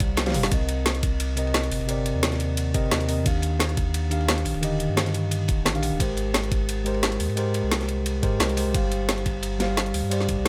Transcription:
Already playing: sub bass C2, tine electric piano G3 G4 C5 D5 F5
0.00 kick, closed hi-hat, ride
0.17 snare, closed hi-hat, ride
0.26 tine electric piano G3 G4 C5 F5, snare, closed hi-hat, high tom, ride
0.30 snare, ride
0.34 sub bass F1, open hi-hat, mid tom
0.43 snare, ride
0.50 sub bass C2, tine electric piano C3 C4 A#4 D#5, kick, closed hi-hat, ride, ride bell
0.69 closed hi-hat, ride, ride bell
0.86 snare, closed hi-hat, ride, ride bell
0.95 closed hi-hat
1.03 kick, closed hi-hat, ride, ride bell
1.20 closed hi-hat, ride, ride bell
1.36 tine electric piano C3 C4 A#4 D#5, closed hi-hat, ride, ride bell
1.47 ride
1.54 snare, closed hi-hat, ride, ride bell
1.63 closed hi-hat
1.72 sub bass G1, open hi-hat, ride, ride bell
1.81 sub bass G1, ride
1.87 tine electric piano C3 C4 A#4 D5, closed hi-hat, ride, ride bell
2.06 closed hi-hat, ride, ride bell
2.15 sub bass D#2
2.23 snare, closed hi-hat, ride, ride bell
2.32 snare, closed hi-hat
2.40 closed hi-hat, ride, ride bell
2.57 closed hi-hat, ride, ride bell
2.74 sub bass G1, tine electric piano C3 C4 A#4 D#5, kick, closed hi-hat, ride, ride bell
2.92 sub bass D#2, snare, closed hi-hat, ride, ride bell
3.01 closed hi-hat
3.08 tine electric piano C3 C4 A#4 D#5, open hi-hat, ride, ride bell
3.18 sub bass F2
3.24 sub bass D#2, tine electric piano D#3 D4 G4 F5, kick, closed hi-hat, ride, ride bell
3.42 closed hi-hat, ride, ride bell
3.60 snare, closed hi-hat, ride, ride bell
3.69 closed hi-hat
3.77 kick, closed hi-hat, ride, ride bell
3.94 closed hi-hat, ride, ride bell
4.10 tine electric piano D#3 D4 G4 F5, closed hi-hat, ride, ride bell
4.21 ride
4.28 snare, closed hi-hat, ride, ride bell
4.38 closed hi-hat
4.45 sub bass A#1, open hi-hat, ride, ride bell
4.54 sub bass D#1, ride
4.61 tine electric piano D3 D#3 G4 D#5, closed hi-hat, ride, ride bell
4.80 closed hi-hat, ride, ride bell
4.89 sub bass G2
4.97 snare, closed hi-hat, ride, ride bell
5.06 snare, closed hi-hat
5.14 closed hi-hat, ride, ride bell
5.31 closed hi-hat, ride, ride bell
5.48 sub bass D#1, kick, closed hi-hat, ride, ride bell
5.65 sub bass A#1, snare, closed hi-hat, ride, ride bell
5.74 tine electric piano D#3 D4 G4 F5, closed hi-hat
5.82 open hi-hat, ride, ride bell
5.92 sub bass D#1
5.99 sub bass G#1, tine electric piano G#3 G4 A#4 C5, kick, closed hi-hat, ride, ride bell
6.17 closed hi-hat, ride, ride bell
6.34 snare, closed hi-hat, ride, ride bell
6.44 closed hi-hat
6.52 kick, closed hi-hat, ride, ride bell
6.69 closed hi-hat, ride, ride bell
6.84 tine electric piano G#3 G4 A#4 C5, closed hi-hat, ride, ride bell
6.94 ride
7.03 snare, closed hi-hat, ride, ride bell
7.12 closed hi-hat
7.20 sub bass D#2, open hi-hat, ride, ride bell
7.29 sub bass G#2, ride
7.36 tine electric piano G#3 G4 A#4 C5, closed hi-hat, ride, ride bell
7.54 closed hi-hat, ride, ride bell
7.63 sub bass C2
7.72 snare, closed hi-hat, ride, ride bell
7.81 snare, closed hi-hat
7.88 closed hi-hat, ride, ride bell
8.06 closed hi-hat, ride, ride bell
8.22 sub bass G#2, tine electric piano G#3 G4 A#4 C5, kick, closed hi-hat, ride, ride bell
8.40 sub bass C2, snare, closed hi-hat, ride, ride bell
8.49 closed hi-hat
8.56 tine electric piano G#3 G4 A#4 C5, open hi-hat, ride, ride bell
8.66 sub bass C2
8.73 sub bass G1, tine electric piano G3 G4 C5 F5, kick, closed hi-hat, ride, ride bell
8.91 closed hi-hat, ride, ride bell
9.09 snare, closed hi-hat, ride, ride bell
9.18 closed hi-hat
9.26 kick, closed hi-hat, ride, ride bell
9.43 closed hi-hat, ride, ride bell
9.59 tine electric piano G3 G4 C5 F5, snare, closed hi-hat, ride, ride bell
9.77 snare, closed hi-hat, ride, ride bell
9.86 closed hi-hat
9.94 sub bass D2, open hi-hat, ride, ride bell
10.04 sub bass G2
10.10 tine electric piano G3 G4 C5 D5, closed hi-hat, ride, ride bell
10.20 snare
10.29 kick, closed hi-hat, ride, ride bell
10.38 sub bass C2

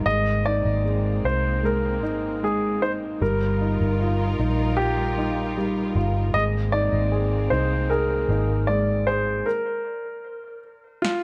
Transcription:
0.06 fingered electric bass G#1, string section G#3 A#3 C4, upright piano G#3, grand piano D#5
0.46 upright piano D#4, grand piano D5
0.65 fingered electric bass G#1
0.85 upright piano G#3
1.24 fingered electric bass C2, upright piano D#4, grand piano C5
1.63 upright piano G#3, grand piano A#4
2.03 fingered electric bass G#1, upright piano D#4
2.43 upright piano G#3, grand piano G#4
2.82 upright piano D#4, grand piano C5
3.21 fingered electric bass G1, upright piano G3, string section G3 D#4 F4 A#4, grand piano A#4
3.61 upright piano D#4
3.81 fingered electric bass G1
4.00 upright piano F4
4.39 fingered electric bass A#1, upright piano D#4
4.77 upright piano F4, grand piano G4
5.18 upright piano D#4
5.57 upright piano G3
5.95 fingered electric bass G1, upright piano F4
6.34 fingered electric bass G#1, string section G#3 A#3 C4, upright piano G#3, grand piano D#5
6.72 upright piano D#4, grand piano D5
6.92 fingered electric bass G#1
7.12 upright piano G#4
7.50 fingered electric bass C2, upright piano D#4, grand piano C5
7.90 upright piano G#4, grand piano A#4
8.28 fingered electric bass G#1, upright piano D#4
8.67 upright piano G#3, grand piano D5
9.07 upright piano G#4, grand piano C5
9.46 grand piano A#4
11.02 grand piano F4, snare

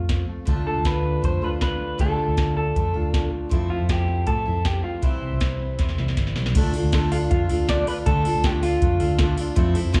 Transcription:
Already playing: fingered electric bass F2, clean electric guitar F3 A3 F4
0.09 clean electric guitar C4, kick, snare, closed hi-hat
0.29 clean electric guitar A3
0.45 fingered electric bass D2, steel-string acoustic guitar D3 A3 D4 F4 A4, clean electric guitar D3 F4, kick, closed hi-hat
0.67 clean electric guitar D4 A4
0.77 fingered electric bass D2
0.85 clean electric guitar F4 B4, kick, snare, closed hi-hat
1.05 clean electric guitar D4
1.22 fingered electric bass F2, steel-string acoustic guitar A3 D4 F4 A4, clean electric guitar A3 C5, kick, closed hi-hat
1.42 fingered electric bass D2, steel-string acoustic guitar D4 F4 A4, clean electric guitar F4 B4
1.61 clean electric guitar C4 B4, kick, snare, closed hi-hat
1.71 clean electric guitar D4
1.81 clean electric guitar A3
1.98 fingered electric bass D2, steel-string acoustic guitar D3 A3 D4 F4 A4, clean electric guitar D3 F4 A4, kick, closed hi-hat
2.19 clean electric guitar D4
2.28 fingered electric bass D2
2.37 clean electric guitar F4, kick, snare, closed hi-hat
2.57 clean electric guitar D4 A4
2.75 fingered electric bass F2, steel-string acoustic guitar A3 D4 F4 A4, clean electric guitar A3, kick, closed hi-hat
2.94 fingered electric bass D2, steel-string acoustic guitar D4 F4 A4, clean electric guitar F4
3.14 clean electric guitar D4, kick, snare, closed hi-hat
3.34 clean electric guitar A3
3.49 fingered electric bass F2, steel-string acoustic guitar F3 A3 C4 E4 A4, clean electric guitar F3 E4, kick, closed hi-hat
3.70 clean electric guitar C4 F4
3.81 fingered electric bass F2
3.89 clean electric guitar E4 G4, kick, snare, closed hi-hat
4.09 clean electric guitar C4
4.26 fingered electric bass A2, steel-string acoustic guitar A3 C4 E4 A4, clean electric guitar A3 A4, kick, closed hi-hat
4.45 fingered electric bass F2, steel-string acoustic guitar C4 E4 A4, clean electric guitar E4
4.65 clean electric guitar C4 G4, kick, snare, closed hi-hat
4.84 clean electric guitar A3 F4
5.02 fingered electric bass C2, steel-string acoustic guitar C3 E3 G3 C4 E4 C5, clean electric guitar C3 E4, kick, closed hi-hat
5.23 clean electric guitar C4
5.33 fingered electric bass C2
5.41 clean electric guitar E4, kick, snare, closed hi-hat
5.61 clean electric guitar C4
5.78 fingered electric bass E2, clean electric guitar E3, steel-string acoustic guitar G3 C4 E4 C5, kick, snare, closed hi-hat
5.89 snare
5.98 fingered electric bass C2, steel-string acoustic guitar G3 C4 E4 C5, clean electric guitar E4, snare
6.08 snare
6.17 fingered electric bass G1, clean electric guitar C4, kick, snare, closed hi-hat
6.27 snare
6.36 fingered electric bass B1, clean electric guitar G3, snare
6.46 snare
6.55 fingered electric bass D2, clean electric guitar D3, steel-string acoustic guitar D3 A3 D4 F4 A4, kick, closed hi-hat, crash
6.74 clean electric guitar A3, steel-string acoustic guitar D4 F4 A4, open hi-hat
6.84 fingered electric bass D2
6.92 steel-string acoustic guitar D3 A3 D4 F4 A4, clean electric guitar D4, kick, snare, closed hi-hat
7.12 steel-string acoustic guitar D4 F4 A4, clean electric guitar F4, open hi-hat
7.30 fingered electric bass F2, steel-string acoustic guitar A3 D4 F4 A4, clean electric guitar A3 F4, kick, closed hi-hat
7.49 fingered electric bass D2, steel-string acoustic guitar D4 F4 A4, clean electric guitar F4, open hi-hat
7.67 steel-string acoustic guitar D3 A3 D4 F4 A4, clean electric guitar C4 D5, kick, snare, closed hi-hat
7.79 clean electric guitar D4
7.86 steel-string acoustic guitar D4 F4 A4, clean electric guitar F4 B4, open hi-hat
8.06 fingered electric bass D2, steel-string acoustic guitar D3 A3 D4 F4 A4, clean electric guitar D3 A4, kick, closed hi-hat
8.24 clean electric guitar A3, steel-string acoustic guitar D4 F4 A4, open hi-hat
8.36 fingered electric bass D2
8.43 steel-string acoustic guitar D3 A3 D4 F4 A4, clean electric guitar D4 G4, kick, snare, closed hi-hat
8.61 steel-string acoustic guitar D4 F4 A4, clean electric guitar F4, open hi-hat
8.81 fingered electric bass F2, steel-string acoustic guitar A3 D4 F4 A4, clean electric guitar A3, kick, closed hi-hat
9.00 fingered electric bass D2, steel-string acoustic guitar D4 F4 A4, clean electric guitar F4, open hi-hat
9.19 steel-string acoustic guitar D3 A3 D4 F4 A4, clean electric guitar D4, kick, snare, closed hi-hat
9.37 steel-string acoustic guitar D4 F4 A4, clean electric guitar F4, open hi-hat
9.55 fingered electric bass F2, steel-string acoustic guitar F3 A3 C4 E4 A4, clean electric guitar F3, kick, closed hi-hat
9.75 clean electric guitar A3, steel-string acoustic guitar C4 E4 A4, open hi-hat
9.85 fingered electric bass F2
9.93 steel-string acoustic guitar F3 A3 C4 E4 A4, clean electric guitar C4, kick, snare, closed hi-hat

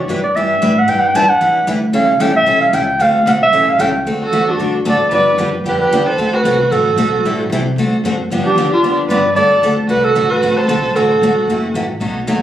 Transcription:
Already playing: clarinet F#4
0.08 upright bass F#2, steel-string acoustic guitar E3 G3 D4 E4 B4, clarinet B4
0.24 clarinet D5, muted upright bass stroke
0.35 upright bass G2, steel-string acoustic guitar E3 G3 D4 E4 B4, clarinet E5
0.62 upright bass A2, steel-string acoustic guitar E3 G3 D4 E4 B4
0.79 clarinet F#5
0.88 upright bass G2, steel-string acoustic guitar E3 G3 D4 E4 B4, clarinet G5
0.99 clarinet F#5
1.07 clarinet G5
1.15 upright bass F#2, steel-string acoustic guitar E3 G3 D4 E4 B4, clarinet A5
1.29 clarinet F#5, muted upright bass stroke
1.41 upright bass E2, steel-string acoustic guitar E3 G3 D4 E4 B4
1.67 upright bass D2, steel-string acoustic guitar E3 G3 D4 E4 B4
1.93 upright bass C#2, steel-string acoustic guitar E3 G3 C#4 E4 A4, clarinet F5
2.20 upright bass A1, steel-string acoustic guitar E3 G3 C#4 E4 A4, clarinet G5
2.36 clarinet E5
2.46 upright bass B1, steel-string acoustic guitar E3 G3 C#4 E4 A4
2.61 clarinet F5
2.73 upright bass C#2, steel-string acoustic guitar E3 G3 C#4 E4 A4, clarinet G5
2.99 upright bass D2, steel-string acoustic guitar D3 A3 C4 F#4 A4, clarinet F5
3.26 upright bass B1, steel-string acoustic guitar D3 A3 C4 F#4 A4, clarinet F#5
3.43 clarinet E5
3.52 upright bass A1, steel-string acoustic guitar E3 G3 C#4 E4 A4
3.69 clarinet F5
3.79 upright bass C#2, steel-string acoustic guitar E3 G3 C#4 E4 A4, clarinet G5
4.05 upright bass D2, steel-string acoustic guitar D3 A3 C4 F#4 A4
4.22 violin F#4, clarinet A4
4.32 upright bass E2, steel-string acoustic guitar D3 A3 C4 F#4 A4
4.48 violin D4, clarinet F#4
4.59 upright bass F#2, steel-string acoustic guitar D3 A3 C4 F#4 A4
4.85 upright bass A2, steel-string acoustic guitar D3 A3 C4 F#4 A4, violin A4
4.89 clarinet D5
5.00 muted upright bass stroke
5.11 upright bass G2, steel-string acoustic guitar D3 F3 B3 D4 G4, violin B4, clarinet D5
5.38 upright bass F#2, steel-string acoustic guitar D3 F3 B3 D4 G4
5.64 upright bass F2, steel-string acoustic guitar D3 F3 B3 D4 G4, violin G4, clarinet B4
5.80 violin G4, clarinet B4
5.91 upright bass E2, steel-string acoustic guitar D3 F3 B3 D4 G4
6.06 violin A4, clarinet C5
6.17 upright bass D2, steel-string acoustic guitar D3 A3 C4 F#4 A4
6.33 violin F#4, clarinet B4
6.44 upright bass C2, steel-string acoustic guitar D3 A3 C4 F#4 A4
6.71 upright bass A1, steel-string acoustic guitar D3 A3 C4 F#4 A4, violin F#4, clarinet A4
6.96 upright bass B1, steel-string acoustic guitar D3 A3 C4 F#4 A4
7.24 upright bass A1, steel-string acoustic guitar E3 G3 C4 E4 A4
7.50 upright bass C2, steel-string acoustic guitar E3 G3 C4 E4 A4
7.76 upright bass D2, steel-string acoustic guitar D3 A3 C4 F#4 A4
8.04 upright bass F#2, steel-string acoustic guitar D3 A3 C4 F#4 A4
8.30 upright bass G2, steel-string acoustic guitar D3 F3 B3 D4 G4
8.44 violin D4, clarinet G4, muted upright bass stroke
8.56 upright bass E2, steel-string acoustic guitar D3 F3 B3 D4 G4
8.71 violin D4, clarinet F4
8.82 upright bass F2, steel-string acoustic guitar D3 F3 B3 D4 G4
9.08 upright bass G2, steel-string acoustic guitar D3 F3 B3 D4 G4, violin B4, clarinet D5
9.35 upright bass F#2, steel-string acoustic guitar D3 A3 C4 F#4 A4, violin A4, clarinet D5
9.62 upright bass D2, steel-string acoustic guitar D3 A3 C4 F#4 A4
9.87 upright bass C2, steel-string acoustic guitar D3 A3 C4 F#4 A4, violin F#4, clarinet B4
10.03 violin F#4, clarinet A4
10.15 upright bass A1, steel-string acoustic guitar D3 A3 C4 F#4 A4
10.30 violin F#4, clarinet B4
10.42 upright bass D2, steel-string acoustic guitar D3 A3 C4 F#4 A4
10.57 violin A4, clarinet C5
10.68 upright bass B1, steel-string acoustic guitar D3 A3 C4 F#4 A4
10.95 upright bass A1, steel-string acoustic guitar D3 A3 C4 F#4 A4, violin F#4, clarinet A4
11.21 upright bass E1, steel-string acoustic guitar D3 A3 C4 F#4 A4
11.47 upright bass F#1, steel-string acoustic guitar C3 E3 A3 E4 F#4
11.74 upright bass A1, steel-string acoustic guitar C3 E3 A3 E4 F#4
12.00 upright bass B1, steel-string acoustic guitar B2 F#3 A3 D#4 F#4
12.27 upright bass D#2, steel-string acoustic guitar B2 F#3 A3 D#4 F#4

